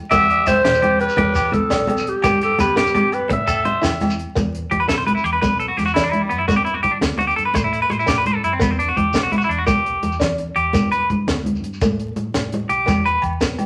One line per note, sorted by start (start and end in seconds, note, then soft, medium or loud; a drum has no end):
0.03 low conga soft
0.11 0.40 E2 medium
0.11 0.26 G4 medium
0.11 0.49 E5 loud
0.11 muted steel-string acoustic guitar stroke medium
0.11 kick medium
0.11 closed hi-hat medium
0.11 high conga medium
0.11 low conga medium
0.11 low agogo medium
0.11 shekere medium
0.30 0.44 G4 medium
0.30 closed hi-hat medium
0.46 0.61 B1 medium
0.46 1.00 C5 loud
0.46 0.61 E5 medium
0.46 closed hi-hat soft
0.46 high conga medium
0.46 low conga medium
0.46 low agogo medium
0.46 shekere medium
0.64 1.07 E2 medium
0.64 0.94 B2 medium
0.64 0.79 G4 medium
0.64 snare loud
0.64 closed hi-hat medium
0.74 shekere medium
0.82 0.97 G4 medium
0.82 closed hi-hat soft
0.82 high conga medium
0.82 low conga medium
0.82 low agogo medium
1.00 1.56 B4 loud
1.00 closed hi-hat soft
1.00 low agogo medium
1.09 shekere medium
1.17 1.60 E2 loud
1.17 1.46 B3 medium
1.17 1.32 G4 medium
1.17 kick loud
1.17 closed hi-hat medium
1.17 high conga loud
1.17 low conga loud
1.27 low conga soft
1.35 1.50 G4 medium
1.35 closed hi-hat soft
1.35 low agogo medium
1.35 shekere medium
1.52 2.10 A4 medium
1.52 muted clean electric guitar stroke medium
1.52 kick medium
1.52 closed hi-hat medium
1.52 high conga medium
1.52 low conga medium
1.70 2.12 B1 medium
1.70 1.99 D4 medium
1.70 snare medium
1.70 closed hi-hat medium
1.70 low agogo medium
1.70 shekere medium
1.87 closed hi-hat medium
1.87 high conga loud
1.87 low conga medium
1.87 low agogo medium
1.97 shekere medium
2.07 2.43 G4 medium
2.07 closed hi-hat medium
2.15 low conga soft
2.22 2.52 G2 loud
2.22 2.53 B3 medium
2.22 2.38 G4 medium
2.22 kick medium
2.22 closed hi-hat medium
2.22 high conga loud
2.22 low conga loud
2.22 low agogo medium
2.22 shekere medium
2.41 2.57 G4 medium
2.41 2.63 A4 medium
2.41 closed hi-hat medium
2.41 shekere soft
2.58 2.72 D2 medium
2.58 3.15 G4 medium
2.58 2.74 B4 medium
2.58 closed hi-hat soft
2.58 high conga loud
2.58 low conga loud
2.58 low agogo medium
2.58 shekere medium
2.67 low conga soft
2.76 3.19 G2 loud
2.76 3.05 B3 medium
2.76 2.92 G4 medium
2.76 snare medium
2.76 closed hi-hat medium
2.76 shekere soft
2.86 low conga soft
2.86 shekere medium
2.94 3.09 G4 medium
2.94 closed hi-hat medium
2.94 high conga loud
2.94 low conga loud
2.94 low agogo medium
2.94 shekere soft
3.04 low conga soft
3.12 3.31 B4 medium
3.12 closed hi-hat medium
3.12 low conga soft
3.12 low agogo medium
3.29 3.73 A2 loud
3.29 3.58 C4 medium
3.29 4.16 E5 medium
3.29 muted clean electric guitar stroke medium
3.29 kick loud
3.29 closed hi-hat medium
3.29 high conga loud
3.29 low conga medium
3.39 low conga soft
3.47 3.62 A4 medium
3.47 closed hi-hat soft
3.47 low agogo medium
3.47 shekere medium
3.65 3.80 C5 medium
3.65 closed hi-hat medium
3.65 high conga medium
3.65 low conga medium
3.75 low conga soft
3.81 4.25 E2 medium
3.81 4.11 E4 medium
3.81 snare medium
3.81 closed hi-hat medium
3.81 low agogo medium
3.81 shekere medium
3.92 low conga soft
4.01 snare soft
4.01 closed hi-hat soft
4.01 high conga medium
4.01 low conga medium
4.01 low agogo medium
4.10 shekere medium
4.19 closed hi-hat soft
4.19 low conga soft
4.35 4.64 E2 medium
4.35 4.65 B3 medium
4.35 kick medium
4.35 closed hi-hat medium
4.35 high conga medium
4.35 low conga medium
4.35 shekere medium
4.46 low conga soft
4.55 closed hi-hat soft
4.55 low conga soft
4.63 low conga soft
4.71 4.86 E2 medium
4.71 4.80 G4 medium
4.71 kick medium
4.71 closed hi-hat medium
4.71 low conga medium
4.80 4.88 B4 medium
4.87 5.16 B1 medium
4.87 5.17 B3 medium
4.87 4.97 A4 medium
4.87 snare medium
4.87 closed hi-hat medium
4.87 high conga medium
4.87 shekere medium
4.98 5.06 C5 medium
4.98 low conga soft
5.07 5.14 B4 medium
5.07 closed hi-hat medium
5.07 low conga medium
5.15 5.24 E4 medium
5.15 shekere soft
5.24 5.38 E2 loud
5.24 5.32 G4 medium
5.24 closed hi-hat medium
5.33 5.40 B4 medium
5.33 low conga soft
5.41 5.71 B1 medium
5.41 5.71 B3 medium
5.41 5.59 B4 medium
5.41 kick medium
5.41 closed hi-hat medium
5.41 high conga medium
5.41 low conga medium
5.41 shekere medium
5.52 low conga soft
5.59 5.68 A4 medium
5.59 closed hi-hat medium
5.68 5.77 F#4 medium
5.77 5.92 E2 medium
5.77 5.85 G4 medium
5.77 snare soft
5.77 closed hi-hat medium
5.77 low conga medium
5.86 5.94 F#4 medium
5.86 shekere soft
5.94 6.23 E3 medium
5.94 6.25 D4 medium
5.94 6.03 E4 medium
5.94 snare medium
5.94 closed hi-hat medium
5.94 high conga medium
5.94 low conga soft
5.94 shekere medium
6.03 6.12 D4 medium
6.12 6.21 E4 medium
6.12 closed hi-hat soft
6.12 low conga medium
6.21 6.30 G3 soft
6.29 6.46 F#2 medium
6.29 6.39 B3 medium
6.29 closed hi-hat soft
6.38 6.47 E4 medium
6.38 low conga soft
6.48 6.77 G2 medium
6.48 6.77 B3 medium
6.48 6.56 F#4 medium
6.48 kick medium
6.48 closed hi-hat medium
6.48 high conga loud
6.48 low conga medium
6.48 shekere medium
6.56 6.64 G4 medium
6.56 low conga soft
6.65 6.74 E4 medium
6.65 closed hi-hat soft
6.65 low conga soft
6.74 6.82 F#4 medium
6.74 low conga soft
6.83 6.98 G2 medium
6.83 6.92 G4 medium
6.83 kick medium
6.83 closed hi-hat soft
6.83 low conga medium
6.91 6.97 D4 medium
7.01 7.30 D2 medium
7.01 7.31 B3 medium
7.01 snare loud
7.01 closed hi-hat medium
7.01 high conga loud
7.01 shekere medium
7.09 low conga soft
7.18 7.27 F#4 medium
7.18 closed hi-hat soft
7.18 low conga medium
7.27 7.36 G4 medium
7.27 shekere soft
7.36 7.51 G2 loud
7.36 7.45 A4 medium
7.36 closed hi-hat soft
7.45 7.55 B4 medium
7.45 low conga soft
7.54 7.83 A2 medium
7.54 7.84 A3 medium
7.54 7.63 C5 loud
7.54 kick medium
7.54 closed hi-hat medium
7.54 high conga medium
7.54 low conga medium
7.54 shekere loud
7.64 7.71 E4 medium
7.64 low conga soft
7.73 7.81 E4 medium
7.73 closed hi-hat soft
7.82 7.90 B4 medium
7.90 8.05 A2 medium
7.90 7.99 C5 medium
7.90 closed hi-hat medium
7.90 low conga medium
7.99 8.08 E4 medium
7.99 shekere soft
8.06 8.37 A2 medium
8.06 8.36 C4 medium
8.06 8.17 G4 medium
8.06 snare medium
8.06 closed hi-hat medium
8.06 high conga medium
8.06 low conga soft
8.06 shekere medium
8.18 8.26 B4 medium
8.25 8.35 C5 medium
8.25 closed hi-hat soft
8.25 low conga medium
8.35 8.43 A4 medium
8.43 8.57 F#2 medium
8.43 8.52 E4 medium
8.43 closed hi-hat medium
8.53 8.61 C4 medium
8.53 low conga soft
8.60 8.89 E2 medium
8.60 8.89 B3 medium
8.60 8.71 B3 medium
8.60 kick medium
8.60 closed hi-hat medium
8.60 high conga medium
8.60 low conga medium
8.60 shekere loud
8.70 8.78 C4 medium
8.70 low conga soft
8.78 8.87 D4 medium
8.78 closed hi-hat medium
8.78 low conga soft
8.89 8.98 F#4 medium
8.89 low conga soft
8.96 9.11 E2 medium
8.96 9.23 G4 medium
8.96 kick medium
8.96 closed hi-hat soft
8.96 low conga loud
9.13 9.42 B1 medium
9.13 9.43 B3 medium
9.13 snare medium
9.13 closed hi-hat medium
9.13 high conga medium
9.13 shekere medium
9.23 9.32 F#4 medium
9.23 low conga soft
9.32 9.37 E4 medium
9.32 closed hi-hat soft
9.32 low conga medium
9.38 9.44 F#4 medium
9.38 shekere soft
9.44 9.50 E4 medium
9.49 9.63 E2 loud
9.49 9.58 D4 medium
9.49 closed hi-hat soft
9.59 9.66 F#4 medium
9.59 low conga soft
9.67 9.96 B1 medium
9.67 9.96 B3 medium
9.67 10.17 G4 medium
9.67 kick medium
9.67 closed hi-hat medium
9.67 high conga medium
9.67 low conga loud
9.67 shekere medium
9.86 closed hi-hat soft
10.02 10.17 E2 medium
10.02 closed hi-hat soft
10.02 low conga loud
10.02 shekere soft
10.12 shekere soft
10.20 10.49 E3 medium
10.20 10.49 D4 medium
10.20 snare medium
10.20 closed hi-hat medium
10.20 high conga medium
10.20 low conga soft
10.20 shekere medium
10.38 closed hi-hat soft
10.56 10.70 E2 medium
10.56 10.89 G4 medium
10.56 closed hi-hat soft
10.65 low conga soft
10.73 11.03 G2 medium
10.73 11.03 B3 medium
10.73 kick medium
10.73 closed hi-hat medium
10.73 high conga loud
10.73 low conga loud
10.73 shekere medium
10.83 low conga soft
10.92 11.09 B4 medium
10.92 closed hi-hat medium
10.92 shekere soft
11.02 low conga soft
11.10 11.24 G2 medium
11.10 kick medium
11.10 closed hi-hat soft
11.10 low conga medium
11.27 11.55 D2 loud
11.27 11.57 B3 medium
11.27 snare medium
11.27 closed hi-hat medium
11.27 high conga medium
11.27 shekere medium
11.45 closed hi-hat soft
11.45 low conga medium
11.56 shekere soft
11.61 11.76 G2 loud
11.61 closed hi-hat medium
11.61 low conga soft
11.73 shekere soft
11.81 12.09 A2 medium
11.81 12.11 A3 medium
11.81 kick medium
11.81 closed hi-hat medium
11.81 high conga medium
11.81 low conga loud
11.81 shekere medium
12.00 closed hi-hat soft
12.16 12.30 A2 medium
12.16 closed hi-hat soft
12.16 low conga medium
12.26 low conga soft
12.34 12.62 A2 medium
12.34 12.63 C4 medium
12.34 snare medium
12.34 closed hi-hat medium
12.34 high conga medium
12.34 low conga soft
12.34 shekere medium
12.52 closed hi-hat soft
12.52 low conga loud
12.69 12.83 B1 medium
12.69 13.02 G4 medium
12.69 closed hi-hat medium
12.69 low conga soft
12.86 13.16 E2 medium
12.86 13.16 B3 medium
12.86 kick medium
12.86 closed hi-hat medium
12.86 high conga loud
12.86 low conga loud
12.86 low agogo medium
12.86 shekere medium
12.97 low conga soft
13.05 13.23 B4 medium
13.05 closed hi-hat soft
13.05 low conga soft
13.15 low conga soft
13.22 13.37 E2 medium
13.22 kick medium
13.22 closed hi-hat soft
13.22 low agogo medium
13.39 13.66 B1 loud
13.39 13.66 B3 medium
13.39 snare medium
13.39 closed hi-hat medium
13.39 high conga medium
13.39 shekere medium
13.59 closed hi-hat medium
13.59 low conga medium
13.59 low agogo medium